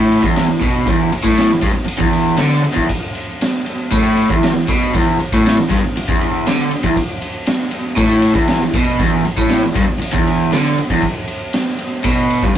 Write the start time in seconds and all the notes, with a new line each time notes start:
Already playing: A2
0.12 ride
0.22 E2, kick
0.36 snare, ride
0.49 E2
0.61 B2, kick, ride
0.87 E2, kick, ride
1.12 muted overdriven electric guitar stroke, ride
1.23 A2, kick
1.38 snare, ride
1.51 E2
1.62 G2, kick, ride
1.74 muted overdriven electric guitar stroke
1.86 muted overdriven electric guitar stroke, ride
1.98 E2, kick
2.13 ride
2.37 D3, snare, ride
2.62 muted overdriven electric guitar stroke, ride
2.73 E2, kick
2.89 kick, ride
3.15 ride
3.41 snare, ride
3.66 ride
3.91 A2, kick, ride
4.17 ride
4.29 E2, kick
4.43 snare, ride
4.54 E2
4.68 B2, kick, ride
4.94 E2, kick, ride
5.20 muted overdriven electric guitar stroke, ride
5.32 A2, kick
5.46 snare, ride
5.57 E2
5.70 G2, kick, ride
5.84 muted overdriven electric guitar stroke
5.97 muted overdriven electric guitar stroke, ride
6.09 E2, kick
6.21 ride
6.46 D3, snare, ride
6.71 muted overdriven electric guitar stroke, ride
6.84 E2, kick
6.96 kick, ride
7.22 ride
7.46 snare, ride
7.71 ride
7.97 A2, kick, ride
8.22 ride
8.34 E2, kick
8.48 snare, ride
8.63 E2
8.74 B2, kick, ride
8.99 E2, kick, ride
9.25 muted overdriven electric guitar stroke, ride
9.37 A2, kick
9.49 snare, ride
9.63 E2
9.75 G2, kick, ride
9.88 muted overdriven electric guitar stroke
10.00 muted overdriven electric guitar stroke, ride
10.13 E2, kick
10.27 ride
10.52 D3, snare, ride
10.78 muted overdriven electric guitar stroke, ride
10.90 E2, kick
11.02 kick, ride
11.28 ride
11.53 snare, ride
11.79 ride
12.04 B2, kick, ride
12.30 ride
12.43 G2, kick